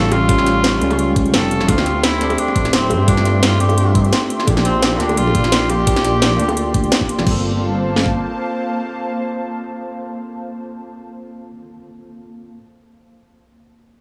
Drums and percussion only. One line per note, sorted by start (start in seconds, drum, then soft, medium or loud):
0.12 closed hi-hat medium
0.12 high bongo medium
0.29 kick loud
0.29 closed hi-hat medium
0.38 snare soft
0.46 snare soft
0.46 closed hi-hat medium
0.64 snare loud
0.64 closed hi-hat medium
0.81 closed hi-hat medium
0.91 closed hi-hat soft
0.91 high bongo medium
0.99 closed hi-hat medium
1.16 kick loud
1.16 closed hi-hat medium
1.26 closed hi-hat soft
1.34 snare loud
1.34 closed hi-hat medium
1.51 closed hi-hat medium
1.60 snare medium
1.68 kick loud
1.68 closed hi-hat medium
1.68 high bongo medium
1.78 snare soft
1.86 snare soft
1.86 closed hi-hat medium
2.04 snare loud
2.04 closed hi-hat medium
2.21 snare soft
2.21 closed hi-hat medium
2.30 closed hi-hat soft
2.30 high bongo medium
2.38 closed hi-hat medium
2.48 high bongo medium
2.56 kick loud
2.56 closed hi-hat medium
2.65 snare soft
2.65 closed hi-hat soft
2.73 snare loud
2.73 closed hi-hat medium
2.90 closed hi-hat medium
2.90 high bongo medium
3.08 kick loud
3.08 closed hi-hat medium
3.17 snare soft
3.25 snare soft
3.25 closed hi-hat medium
3.43 snare loud
3.43 closed hi-hat medium
3.60 closed hi-hat medium
3.69 closed hi-hat soft
3.69 high bongo medium
3.78 closed hi-hat medium
3.95 kick loud
3.95 closed hi-hat medium
4.05 closed hi-hat soft
4.13 snare loud
4.13 closed hi-hat medium
4.30 closed hi-hat medium
4.40 snare medium
4.47 kick loud
4.47 closed hi-hat loud
4.47 high bongo medium
4.57 snare soft
4.65 snare soft
4.65 closed hi-hat medium
4.83 snare loud
4.83 closed hi-hat medium
5.00 snare soft
5.00 closed hi-hat medium
5.09 closed hi-hat soft
5.09 high bongo medium
5.17 closed hi-hat medium
5.27 high bongo medium
5.35 kick loud
5.35 closed hi-hat medium
5.44 snare soft
5.44 closed hi-hat soft
5.52 snare loud
5.52 closed hi-hat medium
5.69 closed hi-hat medium
5.69 high bongo medium
5.87 kick loud
5.87 closed hi-hat loud
5.96 snare soft
5.96 closed hi-hat soft
6.04 snare soft
6.04 closed hi-hat medium
6.22 snare loud
6.22 closed hi-hat loud
6.40 closed hi-hat medium
6.48 closed hi-hat soft
6.48 high bongo medium
6.57 closed hi-hat loud
6.74 kick loud
6.74 closed hi-hat medium
6.84 closed hi-hat soft
6.92 snare loud
6.92 closed hi-hat loud
7.01 kick medium
7.09 closed hi-hat medium
7.19 snare medium
7.27 kick loud
7.27 crash medium
7.96 snare medium
8.06 kick medium